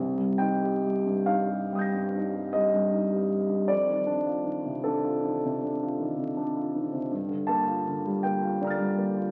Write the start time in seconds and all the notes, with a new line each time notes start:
Already playing: C2
0.18 G3
0.38 D#4 G5
0.63 G4
0.85 G3
1.06 G2
1.26 D#4 F5
1.50 G4
1.73 G3 G5 D#6
1.79 G6 A#6
1.94 G2
2.16 D#4
2.36 G4
2.53 G3 D#5
2.73 G2
2.93 D#4
3.12 G4
3.29 G3
3.49 G2
3.68 F2 D5
3.90 D#3
4.07 D4
4.26 F4
4.44 D#3
4.65 C3
4.84 D4 A4
5.05 F4
5.24 D#3
5.45 C3
5.63 D4
5.83 F4
6.00 D#3
6.17 C3
6.37 D4
6.57 F4
6.76 D#3
6.93 C3
7.11 G2
7.28 D3
7.47 A#3 A5
7.68 F4
7.88 D3
8.06 G3
8.23 A#3 G5
8.42 F4
8.61 D3 D5 A#5
8.67 F6 A6
8.78 G3
8.97 A#3
9.17 F4